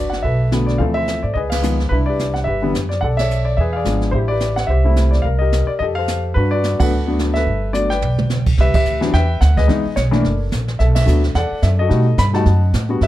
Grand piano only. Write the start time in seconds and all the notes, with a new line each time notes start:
Already playing: D4 F#4 B4 D5
0.10 F#5
0.22 A4 B4 E5
0.51 D3 F#3 A3 B3
0.66 D5
0.78 E3 F3 A3 C4 A4 C5 F5
0.94 A4 C5 E5
1.23 D5
1.34 G#4 B4 D#5
1.50 G#4 B4 F5
1.62 D#3 F3 G#3 B3
1.89 D4 E4 B4
2.06 G4 B4 D5
2.34 F#5
2.44 G4 B4 E5
2.62 D3 E3 G3 B3
2.89 D5
3.01 A4 D5 F#5
3.17 A4 C#5 E5
3.45 D5
3.57 G#4 B4 E5
3.73 G#4 D5 F5
3.85 F3 G#3 B3 D4
4.11 E4 G4 C5
4.28 G4 B4 D5
4.56 F#5
4.67 G4 C5 E5
4.84 G3 A3 C4 E4
5.11 D5
5.22 A#4 F5
5.39 G4 A#4 D#5
5.67 D5
5.79 G4 A4 D#5
5.95 A4 C5 F5
6.34 D4 F#4 B4
6.51 F#4 B4 D5
6.79 F#3 A3 B3 D4 A4 B4 F#5
7.07 F#3 A3 B3 D4
7.34 A4 B4 E5
7.73 F#3 A3 B3 D4 D5
7.90 B4 D5 G5
8.60 G4 B4 E5
8.75 G4 B4 E5
9.01 E3 F#3 B3 D4
9.14 B4 E5 G5
9.41 F#5
9.57 G#4 B4 D#5
9.68 E3 G#3 B3 D#4
9.96 C#5
10.11 E3 A3 A#3 D4 A4 A#4 D5
10.79 A4 E5
10.95 A4 E5
11.06 F#3 A3 B3 D4
11.35 A4 D5 F#5
11.63 E5
11.79 F#4 A4 D#5
11.88 G3 A3 D#4 F#4
12.19 B5
12.33 G3 A3 D#4 F#4 D#5 F#5 A5
12.89 G3 B3 D4 F#4
13.03 G4 B4 E5